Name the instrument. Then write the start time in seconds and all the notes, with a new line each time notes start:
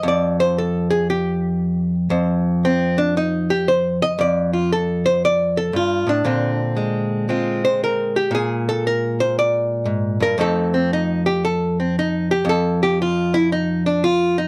hollow-body jazz guitar
Already playing: A3
0.03 F2
0.08 D5
0.40 C5
0.58 A4
0.90 G#4
1.10 G4
2.10 F2 C5
2.65 C4
2.98 D4
3.17 D#4
3.50 G4
3.68 C5
4.02 D#5
4.19 F2 D5
4.53 F4
4.72 A4
5.06 C5
5.25 D5
5.57 A4
5.73 G2 F4
6.07 A2 D4
6.25 A#2 D3 C4
6.77 G#3
7.29 G#3 C4 F4
7.65 C5
7.84 A#4
8.16 G4
8.31 A#2 G#4
8.69 A4
8.87 A#4
9.20 C5
9.39 D5
9.86 G#2
10.20 G2 A#4
10.38 F2 A3 C4 D#4 A4
10.74 C4
10.93 D#4
11.26 G4
11.45 A4
11.80 C4
11.99 D#4
12.31 G4
12.45 F2
12.49 A4
12.83 G4
13.02 F4
13.34 E4
13.52 D#4
13.86 D4
14.04 F4
14.38 D#4